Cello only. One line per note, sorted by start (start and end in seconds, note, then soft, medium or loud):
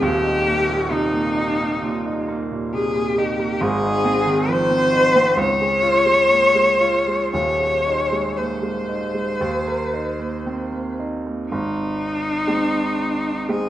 0.02 0.93 G4 loud
0.91 2.29 D#4 medium
2.74 3.20 G#4 loud
3.18 3.62 G4 medium
3.60 4.51 G#4 loud
4.50 5.40 C5 loud
5.38 7.33 C#5 loud
7.33 8.38 C#5 loud
8.37 10.99 C5 medium
11.50 13.50 D#4 medium
13.49 13.69 G#4 loud